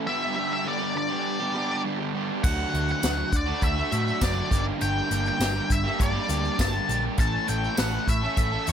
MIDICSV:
0, 0, Header, 1, 6, 480
1, 0, Start_track
1, 0, Tempo, 593472
1, 57, Time_signature, 4, 2, 24, 8
1, 7053, End_track
2, 0, Start_track
2, 0, Title_t, "Lead electric guitar"
2, 0, Program_c, 0, 29
2, 57, Note_on_c, 0, 76, 100
2, 420, Note_off_c, 0, 76, 0
2, 429, Note_on_c, 0, 76, 82
2, 547, Note_off_c, 0, 76, 0
2, 552, Note_on_c, 0, 74, 84
2, 780, Note_off_c, 0, 74, 0
2, 789, Note_on_c, 0, 74, 88
2, 1470, Note_off_c, 0, 74, 0
2, 1973, Note_on_c, 0, 78, 98
2, 2345, Note_off_c, 0, 78, 0
2, 2359, Note_on_c, 0, 78, 88
2, 2718, Note_off_c, 0, 78, 0
2, 2720, Note_on_c, 0, 74, 84
2, 2940, Note_off_c, 0, 74, 0
2, 2944, Note_on_c, 0, 76, 91
2, 3417, Note_off_c, 0, 76, 0
2, 3420, Note_on_c, 0, 74, 95
2, 3753, Note_off_c, 0, 74, 0
2, 3897, Note_on_c, 0, 79, 113
2, 4263, Note_off_c, 0, 79, 0
2, 4272, Note_on_c, 0, 79, 106
2, 4627, Note_on_c, 0, 76, 96
2, 4634, Note_off_c, 0, 79, 0
2, 4863, Note_off_c, 0, 76, 0
2, 4866, Note_on_c, 0, 74, 92
2, 5345, Note_on_c, 0, 81, 115
2, 5355, Note_off_c, 0, 74, 0
2, 5675, Note_off_c, 0, 81, 0
2, 5824, Note_on_c, 0, 81, 127
2, 6053, Note_off_c, 0, 81, 0
2, 6057, Note_on_c, 0, 79, 91
2, 6300, Note_off_c, 0, 79, 0
2, 6303, Note_on_c, 0, 78, 97
2, 6544, Note_on_c, 0, 76, 104
2, 6546, Note_off_c, 0, 78, 0
2, 7030, Note_off_c, 0, 76, 0
2, 7053, End_track
3, 0, Start_track
3, 0, Title_t, "Overdriven electric guitar"
3, 0, Program_c, 1, 29
3, 52, Note_on_c, 1, 43, 99
3, 56, Note_on_c, 1, 50, 96
3, 62, Note_on_c, 1, 55, 102
3, 65, Note_on_c, 1, 59, 111
3, 70, Note_on_c, 1, 62, 101
3, 70, Note_on_c, 1, 67, 114
3, 279, Note_off_c, 1, 55, 0
3, 289, Note_on_c, 1, 55, 81
3, 292, Note_off_c, 1, 59, 0
3, 301, Note_on_c, 1, 59, 81
3, 303, Note_off_c, 1, 62, 0
3, 307, Note_off_c, 1, 67, 0
3, 307, Note_on_c, 1, 62, 85
3, 317, Note_on_c, 1, 67, 94
3, 515, Note_off_c, 1, 43, 0
3, 522, Note_off_c, 1, 50, 0
3, 525, Note_on_c, 1, 43, 92
3, 531, Note_off_c, 1, 55, 0
3, 531, Note_on_c, 1, 50, 86
3, 533, Note_off_c, 1, 59, 0
3, 539, Note_off_c, 1, 67, 0
3, 541, Note_off_c, 1, 62, 0
3, 541, Note_on_c, 1, 55, 95
3, 543, Note_on_c, 1, 59, 95
3, 544, Note_on_c, 1, 62, 95
3, 548, Note_on_c, 1, 67, 102
3, 634, Note_off_c, 1, 67, 0
3, 643, Note_on_c, 1, 67, 71
3, 650, Note_off_c, 1, 59, 0
3, 651, Note_off_c, 1, 62, 0
3, 655, Note_on_c, 1, 62, 71
3, 659, Note_off_c, 1, 55, 0
3, 660, Note_on_c, 1, 59, 62
3, 668, Note_on_c, 1, 55, 57
3, 766, Note_off_c, 1, 59, 0
3, 767, Note_off_c, 1, 55, 0
3, 773, Note_off_c, 1, 67, 0
3, 775, Note_off_c, 1, 62, 0
3, 888, Note_on_c, 1, 67, 71
3, 891, Note_off_c, 1, 43, 0
3, 894, Note_off_c, 1, 50, 0
3, 898, Note_on_c, 1, 62, 66
3, 906, Note_on_c, 1, 59, 67
3, 912, Note_on_c, 1, 55, 56
3, 1121, Note_off_c, 1, 67, 0
3, 1131, Note_on_c, 1, 67, 77
3, 1133, Note_off_c, 1, 62, 0
3, 1136, Note_off_c, 1, 59, 0
3, 1137, Note_on_c, 1, 62, 68
3, 1141, Note_off_c, 1, 55, 0
3, 1146, Note_on_c, 1, 59, 68
3, 1151, Note_on_c, 1, 55, 56
3, 1241, Note_off_c, 1, 55, 0
3, 1248, Note_off_c, 1, 59, 0
3, 1251, Note_on_c, 1, 55, 69
3, 1258, Note_on_c, 1, 59, 87
3, 1265, Note_off_c, 1, 62, 0
3, 1265, Note_off_c, 1, 67, 0
3, 1268, Note_on_c, 1, 62, 83
3, 1274, Note_on_c, 1, 67, 90
3, 1485, Note_off_c, 1, 55, 0
3, 1486, Note_on_c, 1, 43, 101
3, 1491, Note_off_c, 1, 59, 0
3, 1492, Note_on_c, 1, 50, 99
3, 1495, Note_on_c, 1, 55, 96
3, 1499, Note_off_c, 1, 62, 0
3, 1499, Note_off_c, 1, 67, 0
3, 1500, Note_on_c, 1, 59, 108
3, 1503, Note_on_c, 1, 62, 98
3, 1508, Note_on_c, 1, 67, 91
3, 1596, Note_off_c, 1, 67, 0
3, 1605, Note_on_c, 1, 67, 67
3, 1613, Note_off_c, 1, 62, 0
3, 1614, Note_off_c, 1, 59, 0
3, 1616, Note_on_c, 1, 62, 66
3, 1621, Note_off_c, 1, 55, 0
3, 1624, Note_on_c, 1, 59, 64
3, 1631, Note_on_c, 1, 55, 65
3, 1718, Note_off_c, 1, 55, 0
3, 1728, Note_off_c, 1, 59, 0
3, 1728, Note_on_c, 1, 55, 85
3, 1737, Note_on_c, 1, 59, 86
3, 1740, Note_off_c, 1, 62, 0
3, 1741, Note_off_c, 1, 67, 0
3, 1743, Note_on_c, 1, 62, 81
3, 1750, Note_on_c, 1, 67, 91
3, 1851, Note_off_c, 1, 43, 0
3, 1854, Note_off_c, 1, 50, 0
3, 1958, Note_off_c, 1, 55, 0
3, 1963, Note_off_c, 1, 59, 0
3, 1969, Note_off_c, 1, 67, 0
3, 1970, Note_on_c, 1, 50, 96
3, 1976, Note_on_c, 1, 54, 91
3, 1984, Note_on_c, 1, 57, 105
3, 1986, Note_off_c, 1, 62, 0
3, 1990, Note_on_c, 1, 62, 102
3, 1991, Note_on_c, 1, 66, 107
3, 2191, Note_off_c, 1, 54, 0
3, 2201, Note_on_c, 1, 54, 78
3, 2207, Note_off_c, 1, 57, 0
3, 2211, Note_on_c, 1, 57, 85
3, 2214, Note_off_c, 1, 62, 0
3, 2215, Note_off_c, 1, 66, 0
3, 2217, Note_on_c, 1, 62, 74
3, 2225, Note_on_c, 1, 66, 88
3, 2426, Note_off_c, 1, 50, 0
3, 2433, Note_off_c, 1, 54, 0
3, 2436, Note_on_c, 1, 50, 92
3, 2443, Note_on_c, 1, 54, 104
3, 2446, Note_off_c, 1, 57, 0
3, 2449, Note_off_c, 1, 66, 0
3, 2450, Note_on_c, 1, 57, 95
3, 2452, Note_off_c, 1, 62, 0
3, 2455, Note_on_c, 1, 62, 103
3, 2459, Note_on_c, 1, 66, 105
3, 2558, Note_off_c, 1, 66, 0
3, 2568, Note_on_c, 1, 66, 73
3, 2579, Note_off_c, 1, 62, 0
3, 2582, Note_on_c, 1, 62, 67
3, 2589, Note_off_c, 1, 57, 0
3, 2592, Note_on_c, 1, 57, 56
3, 2679, Note_off_c, 1, 54, 0
3, 2688, Note_off_c, 1, 66, 0
3, 2691, Note_off_c, 1, 57, 0
3, 2693, Note_off_c, 1, 62, 0
3, 2804, Note_on_c, 1, 66, 80
3, 2806, Note_off_c, 1, 50, 0
3, 2815, Note_on_c, 1, 62, 70
3, 2828, Note_on_c, 1, 57, 57
3, 3035, Note_off_c, 1, 66, 0
3, 3045, Note_on_c, 1, 66, 67
3, 3048, Note_off_c, 1, 62, 0
3, 3058, Note_on_c, 1, 62, 71
3, 3065, Note_off_c, 1, 57, 0
3, 3068, Note_on_c, 1, 57, 60
3, 3165, Note_on_c, 1, 54, 73
3, 3172, Note_off_c, 1, 57, 0
3, 3172, Note_off_c, 1, 62, 0
3, 3175, Note_on_c, 1, 57, 84
3, 3177, Note_off_c, 1, 66, 0
3, 3181, Note_on_c, 1, 62, 79
3, 3187, Note_on_c, 1, 66, 93
3, 3402, Note_off_c, 1, 54, 0
3, 3402, Note_on_c, 1, 50, 86
3, 3412, Note_on_c, 1, 54, 96
3, 3414, Note_off_c, 1, 62, 0
3, 3415, Note_off_c, 1, 57, 0
3, 3418, Note_on_c, 1, 57, 105
3, 3419, Note_off_c, 1, 66, 0
3, 3423, Note_on_c, 1, 62, 91
3, 3429, Note_on_c, 1, 66, 100
3, 3508, Note_off_c, 1, 66, 0
3, 3518, Note_on_c, 1, 66, 72
3, 3524, Note_off_c, 1, 62, 0
3, 3533, Note_on_c, 1, 62, 65
3, 3538, Note_off_c, 1, 57, 0
3, 3542, Note_on_c, 1, 57, 65
3, 3632, Note_off_c, 1, 66, 0
3, 3635, Note_off_c, 1, 50, 0
3, 3637, Note_on_c, 1, 43, 99
3, 3640, Note_off_c, 1, 54, 0
3, 3640, Note_off_c, 1, 62, 0
3, 3643, Note_on_c, 1, 50, 89
3, 3646, Note_on_c, 1, 55, 100
3, 3653, Note_off_c, 1, 57, 0
3, 3655, Note_on_c, 1, 62, 101
3, 3656, Note_on_c, 1, 58, 109
3, 3660, Note_on_c, 1, 67, 110
3, 3861, Note_off_c, 1, 43, 0
3, 3866, Note_off_c, 1, 50, 0
3, 3870, Note_on_c, 1, 43, 94
3, 3871, Note_off_c, 1, 55, 0
3, 3876, Note_off_c, 1, 58, 0
3, 3876, Note_on_c, 1, 50, 93
3, 3881, Note_on_c, 1, 55, 101
3, 3882, Note_off_c, 1, 62, 0
3, 3885, Note_off_c, 1, 67, 0
3, 3886, Note_on_c, 1, 58, 101
3, 3892, Note_on_c, 1, 62, 103
3, 3895, Note_on_c, 1, 67, 102
3, 4105, Note_off_c, 1, 55, 0
3, 4115, Note_on_c, 1, 55, 76
3, 4116, Note_off_c, 1, 58, 0
3, 4126, Note_off_c, 1, 62, 0
3, 4126, Note_on_c, 1, 58, 88
3, 4130, Note_off_c, 1, 67, 0
3, 4136, Note_on_c, 1, 62, 90
3, 4140, Note_on_c, 1, 67, 99
3, 4346, Note_off_c, 1, 43, 0
3, 4354, Note_off_c, 1, 50, 0
3, 4356, Note_on_c, 1, 43, 100
3, 4358, Note_off_c, 1, 55, 0
3, 4360, Note_off_c, 1, 58, 0
3, 4364, Note_off_c, 1, 62, 0
3, 4364, Note_on_c, 1, 50, 97
3, 4367, Note_on_c, 1, 55, 92
3, 4369, Note_off_c, 1, 67, 0
3, 4370, Note_on_c, 1, 58, 100
3, 4373, Note_on_c, 1, 62, 109
3, 4379, Note_on_c, 1, 67, 94
3, 4463, Note_off_c, 1, 67, 0
3, 4471, Note_off_c, 1, 62, 0
3, 4473, Note_on_c, 1, 67, 77
3, 4478, Note_off_c, 1, 58, 0
3, 4481, Note_on_c, 1, 62, 68
3, 4486, Note_off_c, 1, 55, 0
3, 4488, Note_on_c, 1, 58, 61
3, 4496, Note_on_c, 1, 55, 66
3, 4595, Note_off_c, 1, 55, 0
3, 4596, Note_off_c, 1, 58, 0
3, 4598, Note_off_c, 1, 67, 0
3, 4599, Note_off_c, 1, 62, 0
3, 4718, Note_on_c, 1, 67, 73
3, 4725, Note_on_c, 1, 62, 74
3, 4726, Note_off_c, 1, 43, 0
3, 4730, Note_off_c, 1, 50, 0
3, 4736, Note_on_c, 1, 58, 70
3, 4741, Note_on_c, 1, 55, 58
3, 4952, Note_off_c, 1, 67, 0
3, 4959, Note_off_c, 1, 62, 0
3, 4961, Note_on_c, 1, 67, 80
3, 4967, Note_off_c, 1, 58, 0
3, 4968, Note_on_c, 1, 62, 74
3, 4973, Note_off_c, 1, 55, 0
3, 4977, Note_on_c, 1, 58, 65
3, 4982, Note_on_c, 1, 55, 71
3, 5069, Note_off_c, 1, 55, 0
3, 5076, Note_off_c, 1, 58, 0
3, 5078, Note_on_c, 1, 55, 80
3, 5085, Note_off_c, 1, 62, 0
3, 5086, Note_on_c, 1, 58, 84
3, 5093, Note_off_c, 1, 67, 0
3, 5095, Note_on_c, 1, 62, 91
3, 5103, Note_on_c, 1, 67, 82
3, 5315, Note_on_c, 1, 43, 97
3, 5320, Note_off_c, 1, 55, 0
3, 5321, Note_on_c, 1, 50, 91
3, 5325, Note_off_c, 1, 58, 0
3, 5327, Note_off_c, 1, 62, 0
3, 5329, Note_off_c, 1, 67, 0
3, 5330, Note_on_c, 1, 55, 104
3, 5335, Note_on_c, 1, 58, 108
3, 5337, Note_on_c, 1, 62, 109
3, 5339, Note_on_c, 1, 67, 115
3, 5432, Note_off_c, 1, 67, 0
3, 5440, Note_off_c, 1, 62, 0
3, 5441, Note_on_c, 1, 67, 66
3, 5447, Note_off_c, 1, 58, 0
3, 5450, Note_on_c, 1, 62, 68
3, 5457, Note_on_c, 1, 58, 64
3, 5458, Note_off_c, 1, 55, 0
3, 5467, Note_on_c, 1, 55, 57
3, 5551, Note_off_c, 1, 55, 0
3, 5559, Note_off_c, 1, 58, 0
3, 5561, Note_on_c, 1, 55, 85
3, 5567, Note_off_c, 1, 62, 0
3, 5569, Note_on_c, 1, 58, 87
3, 5574, Note_off_c, 1, 67, 0
3, 5576, Note_on_c, 1, 62, 89
3, 5584, Note_on_c, 1, 67, 102
3, 5685, Note_off_c, 1, 43, 0
3, 5688, Note_off_c, 1, 50, 0
3, 5794, Note_off_c, 1, 55, 0
3, 5798, Note_off_c, 1, 58, 0
3, 5801, Note_off_c, 1, 62, 0
3, 5802, Note_on_c, 1, 45, 99
3, 5805, Note_off_c, 1, 67, 0
3, 5807, Note_on_c, 1, 52, 99
3, 5813, Note_on_c, 1, 57, 98
3, 5822, Note_on_c, 1, 61, 100
3, 5825, Note_on_c, 1, 69, 105
3, 6036, Note_off_c, 1, 52, 0
3, 6038, Note_off_c, 1, 57, 0
3, 6039, Note_on_c, 1, 52, 76
3, 6045, Note_off_c, 1, 61, 0
3, 6048, Note_on_c, 1, 57, 88
3, 6051, Note_off_c, 1, 69, 0
3, 6055, Note_on_c, 1, 61, 76
3, 6061, Note_on_c, 1, 69, 85
3, 6263, Note_off_c, 1, 45, 0
3, 6273, Note_on_c, 1, 45, 92
3, 6280, Note_off_c, 1, 52, 0
3, 6280, Note_off_c, 1, 57, 0
3, 6283, Note_on_c, 1, 52, 103
3, 6284, Note_off_c, 1, 61, 0
3, 6290, Note_off_c, 1, 69, 0
3, 6290, Note_on_c, 1, 57, 106
3, 6294, Note_on_c, 1, 61, 114
3, 6299, Note_on_c, 1, 69, 107
3, 6395, Note_off_c, 1, 69, 0
3, 6404, Note_on_c, 1, 69, 77
3, 6411, Note_off_c, 1, 61, 0
3, 6420, Note_off_c, 1, 57, 0
3, 6420, Note_on_c, 1, 61, 73
3, 6429, Note_on_c, 1, 57, 68
3, 6522, Note_off_c, 1, 57, 0
3, 6527, Note_off_c, 1, 61, 0
3, 6529, Note_off_c, 1, 52, 0
3, 6529, Note_off_c, 1, 69, 0
3, 6644, Note_off_c, 1, 45, 0
3, 6649, Note_on_c, 1, 69, 81
3, 6660, Note_on_c, 1, 61, 72
3, 6669, Note_on_c, 1, 57, 63
3, 6880, Note_off_c, 1, 69, 0
3, 6890, Note_on_c, 1, 69, 78
3, 6894, Note_off_c, 1, 61, 0
3, 6904, Note_off_c, 1, 57, 0
3, 6904, Note_on_c, 1, 61, 69
3, 6914, Note_on_c, 1, 57, 66
3, 7007, Note_off_c, 1, 57, 0
3, 7008, Note_on_c, 1, 52, 77
3, 7017, Note_off_c, 1, 61, 0
3, 7017, Note_on_c, 1, 57, 81
3, 7018, Note_off_c, 1, 69, 0
3, 7027, Note_on_c, 1, 61, 87
3, 7028, Note_on_c, 1, 69, 100
3, 7053, Note_off_c, 1, 52, 0
3, 7053, Note_off_c, 1, 57, 0
3, 7053, Note_off_c, 1, 61, 0
3, 7053, Note_off_c, 1, 69, 0
3, 7053, End_track
4, 0, Start_track
4, 0, Title_t, "Picked electric bass"
4, 0, Program_c, 2, 34
4, 1976, Note_on_c, 2, 38, 98
4, 2120, Note_off_c, 2, 38, 0
4, 2215, Note_on_c, 2, 38, 85
4, 2359, Note_off_c, 2, 38, 0
4, 2454, Note_on_c, 2, 38, 95
4, 2599, Note_off_c, 2, 38, 0
4, 2690, Note_on_c, 2, 38, 93
4, 2836, Note_off_c, 2, 38, 0
4, 2930, Note_on_c, 2, 38, 86
4, 3076, Note_off_c, 2, 38, 0
4, 3173, Note_on_c, 2, 45, 93
4, 3318, Note_off_c, 2, 45, 0
4, 3412, Note_on_c, 2, 30, 89
4, 3558, Note_off_c, 2, 30, 0
4, 3652, Note_on_c, 2, 31, 83
4, 3797, Note_off_c, 2, 31, 0
4, 3896, Note_on_c, 2, 31, 101
4, 4040, Note_off_c, 2, 31, 0
4, 4131, Note_on_c, 2, 31, 82
4, 4277, Note_off_c, 2, 31, 0
4, 4367, Note_on_c, 2, 31, 105
4, 4514, Note_off_c, 2, 31, 0
4, 4612, Note_on_c, 2, 31, 94
4, 4757, Note_off_c, 2, 31, 0
4, 4851, Note_on_c, 2, 31, 88
4, 4997, Note_off_c, 2, 31, 0
4, 5090, Note_on_c, 2, 38, 92
4, 5235, Note_off_c, 2, 38, 0
4, 5333, Note_on_c, 2, 31, 98
4, 5478, Note_off_c, 2, 31, 0
4, 5571, Note_on_c, 2, 34, 85
4, 5716, Note_off_c, 2, 34, 0
4, 5811, Note_on_c, 2, 33, 105
4, 5956, Note_off_c, 2, 33, 0
4, 6058, Note_on_c, 2, 33, 88
4, 6201, Note_off_c, 2, 33, 0
4, 6299, Note_on_c, 2, 33, 95
4, 6442, Note_off_c, 2, 33, 0
4, 6531, Note_on_c, 2, 33, 91
4, 6677, Note_off_c, 2, 33, 0
4, 6776, Note_on_c, 2, 33, 88
4, 6920, Note_off_c, 2, 33, 0
4, 7021, Note_on_c, 2, 40, 95
4, 7053, Note_off_c, 2, 40, 0
4, 7053, End_track
5, 0, Start_track
5, 0, Title_t, "Muted overdriven electric guitar strokes"
5, 776, Note_on_c, 9, 29, 55
5, 856, Note_off_c, 9, 29, 0
5, 2688, Note_on_c, 9, 29, 43
5, 2769, Note_off_c, 9, 29, 0
5, 4604, Note_on_c, 9, 29, 47
5, 4685, Note_off_c, 9, 29, 0
5, 6532, Note_on_c, 9, 29, 52
5, 6612, Note_off_c, 9, 29, 0
5, 7053, End_track
6, 0, Start_track
6, 0, Title_t, "Drums"
6, 1971, Note_on_c, 9, 49, 108
6, 1972, Note_on_c, 9, 82, 64
6, 1973, Note_on_c, 9, 36, 114
6, 2051, Note_off_c, 9, 49, 0
6, 2053, Note_off_c, 9, 82, 0
6, 2054, Note_off_c, 9, 36, 0
6, 2219, Note_on_c, 9, 42, 80
6, 2300, Note_off_c, 9, 42, 0
6, 2333, Note_on_c, 9, 82, 25
6, 2413, Note_off_c, 9, 82, 0
6, 2450, Note_on_c, 9, 82, 73
6, 2451, Note_on_c, 9, 42, 102
6, 2451, Note_on_c, 9, 54, 109
6, 2458, Note_on_c, 9, 38, 113
6, 2531, Note_off_c, 9, 82, 0
6, 2532, Note_off_c, 9, 42, 0
6, 2532, Note_off_c, 9, 54, 0
6, 2539, Note_off_c, 9, 38, 0
6, 2688, Note_on_c, 9, 42, 70
6, 2690, Note_on_c, 9, 36, 83
6, 2691, Note_on_c, 9, 82, 87
6, 2768, Note_off_c, 9, 42, 0
6, 2771, Note_off_c, 9, 36, 0
6, 2772, Note_off_c, 9, 82, 0
6, 2923, Note_on_c, 9, 82, 66
6, 2929, Note_on_c, 9, 42, 95
6, 2930, Note_on_c, 9, 36, 92
6, 3004, Note_off_c, 9, 82, 0
6, 3010, Note_off_c, 9, 42, 0
6, 3011, Note_off_c, 9, 36, 0
6, 3170, Note_on_c, 9, 42, 77
6, 3171, Note_on_c, 9, 82, 87
6, 3251, Note_off_c, 9, 42, 0
6, 3252, Note_off_c, 9, 82, 0
6, 3296, Note_on_c, 9, 82, 26
6, 3376, Note_off_c, 9, 82, 0
6, 3408, Note_on_c, 9, 42, 106
6, 3408, Note_on_c, 9, 54, 114
6, 3410, Note_on_c, 9, 36, 75
6, 3415, Note_on_c, 9, 38, 106
6, 3417, Note_on_c, 9, 82, 67
6, 3489, Note_off_c, 9, 42, 0
6, 3489, Note_off_c, 9, 54, 0
6, 3491, Note_off_c, 9, 36, 0
6, 3496, Note_off_c, 9, 38, 0
6, 3498, Note_off_c, 9, 82, 0
6, 3649, Note_on_c, 9, 42, 71
6, 3650, Note_on_c, 9, 36, 93
6, 3660, Note_on_c, 9, 82, 88
6, 3730, Note_off_c, 9, 42, 0
6, 3731, Note_off_c, 9, 36, 0
6, 3741, Note_off_c, 9, 82, 0
6, 3888, Note_on_c, 9, 42, 101
6, 3900, Note_on_c, 9, 82, 64
6, 3969, Note_off_c, 9, 42, 0
6, 3981, Note_off_c, 9, 82, 0
6, 4131, Note_on_c, 9, 42, 77
6, 4139, Note_on_c, 9, 82, 90
6, 4212, Note_off_c, 9, 42, 0
6, 4220, Note_off_c, 9, 82, 0
6, 4253, Note_on_c, 9, 82, 29
6, 4334, Note_off_c, 9, 82, 0
6, 4371, Note_on_c, 9, 42, 100
6, 4371, Note_on_c, 9, 54, 107
6, 4377, Note_on_c, 9, 82, 78
6, 4379, Note_on_c, 9, 38, 118
6, 4452, Note_off_c, 9, 42, 0
6, 4452, Note_off_c, 9, 54, 0
6, 4458, Note_off_c, 9, 82, 0
6, 4460, Note_off_c, 9, 38, 0
6, 4612, Note_on_c, 9, 36, 77
6, 4614, Note_on_c, 9, 82, 104
6, 4616, Note_on_c, 9, 42, 83
6, 4693, Note_off_c, 9, 36, 0
6, 4695, Note_off_c, 9, 82, 0
6, 4697, Note_off_c, 9, 42, 0
6, 4852, Note_on_c, 9, 36, 88
6, 4854, Note_on_c, 9, 42, 108
6, 4856, Note_on_c, 9, 82, 74
6, 4933, Note_off_c, 9, 36, 0
6, 4935, Note_off_c, 9, 42, 0
6, 4937, Note_off_c, 9, 82, 0
6, 5088, Note_on_c, 9, 42, 81
6, 5090, Note_on_c, 9, 82, 102
6, 5169, Note_off_c, 9, 42, 0
6, 5171, Note_off_c, 9, 82, 0
6, 5214, Note_on_c, 9, 82, 30
6, 5295, Note_off_c, 9, 82, 0
6, 5331, Note_on_c, 9, 36, 83
6, 5331, Note_on_c, 9, 42, 108
6, 5331, Note_on_c, 9, 54, 116
6, 5338, Note_on_c, 9, 38, 115
6, 5346, Note_on_c, 9, 82, 79
6, 5412, Note_off_c, 9, 36, 0
6, 5412, Note_off_c, 9, 42, 0
6, 5412, Note_off_c, 9, 54, 0
6, 5419, Note_off_c, 9, 38, 0
6, 5427, Note_off_c, 9, 82, 0
6, 5571, Note_on_c, 9, 42, 75
6, 5587, Note_on_c, 9, 82, 114
6, 5651, Note_off_c, 9, 42, 0
6, 5668, Note_off_c, 9, 82, 0
6, 5803, Note_on_c, 9, 42, 106
6, 5809, Note_on_c, 9, 36, 107
6, 5822, Note_on_c, 9, 82, 85
6, 5883, Note_off_c, 9, 42, 0
6, 5890, Note_off_c, 9, 36, 0
6, 5903, Note_off_c, 9, 82, 0
6, 6047, Note_on_c, 9, 42, 85
6, 6058, Note_on_c, 9, 82, 107
6, 6128, Note_off_c, 9, 42, 0
6, 6139, Note_off_c, 9, 82, 0
6, 6179, Note_on_c, 9, 82, 31
6, 6259, Note_off_c, 9, 82, 0
6, 6287, Note_on_c, 9, 42, 110
6, 6287, Note_on_c, 9, 54, 127
6, 6294, Note_on_c, 9, 38, 125
6, 6302, Note_on_c, 9, 82, 86
6, 6368, Note_off_c, 9, 42, 0
6, 6368, Note_off_c, 9, 54, 0
6, 6375, Note_off_c, 9, 38, 0
6, 6383, Note_off_c, 9, 82, 0
6, 6532, Note_on_c, 9, 36, 78
6, 6534, Note_on_c, 9, 42, 82
6, 6539, Note_on_c, 9, 82, 109
6, 6613, Note_off_c, 9, 36, 0
6, 6615, Note_off_c, 9, 42, 0
6, 6620, Note_off_c, 9, 82, 0
6, 6768, Note_on_c, 9, 42, 103
6, 6772, Note_on_c, 9, 36, 89
6, 6774, Note_on_c, 9, 82, 81
6, 6849, Note_off_c, 9, 42, 0
6, 6852, Note_off_c, 9, 36, 0
6, 6854, Note_off_c, 9, 82, 0
6, 7008, Note_on_c, 9, 42, 84
6, 7017, Note_on_c, 9, 82, 103
6, 7053, Note_off_c, 9, 42, 0
6, 7053, Note_off_c, 9, 82, 0
6, 7053, End_track
0, 0, End_of_file